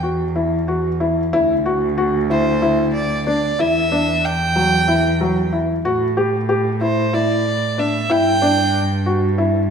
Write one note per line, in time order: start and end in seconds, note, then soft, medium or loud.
0.00 1.35 E2 medium
0.00 0.22 F#4 medium
0.36 0.55 E4 medium
0.68 0.87 F#4 medium
1.00 1.20 E4 medium
1.33 3.61 D2 medium
1.33 1.52 E4 medium
1.66 1.85 F#4 medium
1.98 2.17 F#4 medium
2.30 2.49 E4 medium
2.30 2.91 C5 medium
2.62 3.00 E4 medium
2.94 3.24 D5 medium
3.26 3.46 D4 medium
3.26 3.62 D5 medium
3.59 5.87 E2 medium
3.59 3.78 E4 medium
3.59 4.27 E5 loud
3.92 4.30 D4 medium
4.25 5.53 G5 loud
4.56 4.75 F#3 medium
4.88 5.07 E4 medium
5.21 5.40 F#3 medium
5.53 5.72 E4 medium
5.85 8.11 A2 medium
5.85 6.04 F#4 medium
6.17 6.36 G4 medium
6.49 6.68 G4 medium
6.81 7.00 E4 medium
6.81 7.16 C5 medium
7.13 7.51 E4 medium
7.13 7.80 D5 medium
7.78 7.97 D4 medium
7.78 8.13 E5 medium
8.10 9.70 G2 medium
8.10 8.29 E4 medium
8.10 9.07 G5 loud
8.42 8.80 D4 medium
9.06 9.25 F#4 medium
9.38 9.57 E4 medium